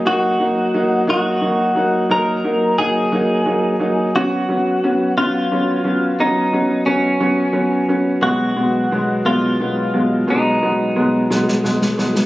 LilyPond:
<<
  \new Staff \with { instrumentName = "Clean electric guitar" } { \time 6/8 \key ees \minor \tempo 4. = 59 ges'4. ges'4. | bes'4 aes'2 | fis'4. f'4. | ees'4 cis'2 |
ges'4. f'4. | ees'2~ ees'8 r8 | }
  \new Staff \with { instrumentName = "Upright piano" } { \time 6/8 \key ees \minor <ges bes ees'>8 <ges bes ees'>8 <ges bes ees'>8 <ges bes ees'>8 <ges bes ees'>8 <ges bes ees'>8 | <ges bes ees'>8 <ges bes ees'>8 <ges bes ees'>8 <ges bes ees'>8 <ges bes ees'>8 <ges bes ees'>8 | <fis b cis'>8 <fis b cis'>8 <fis b cis'>8 <fis b cis'>8 <fis b cis'>8 <fis b cis'>8 | <fis b cis'>8 <fis b cis'>8 <fis b cis'>8 <fis b cis'>8 <fis b cis'>8 <fis b cis'>8 |
<ces ges aes ces'>8 <ces ges aes ces'>8 <ces ges aes ces'>8 <ces ges aes ces'>8 <ces ges aes ces'>8 <ces ges aes ces'>8 | <ces ges aes ces'>8 <ces ges aes ces'>8 <ces ges aes ces'>8 <ces ges aes ces'>8 <ces ges aes ces'>8 <ces ges aes ces'>8 | }
  \new DrumStaff \with { instrumentName = "Drums" } \drummode { \time 6/8 r4. r4. | r4. r4. | r4. r4. | r4. r4. |
r4. r4. | r4. sn16 sn16 sn16 sn16 sn16 sn16 | }
>>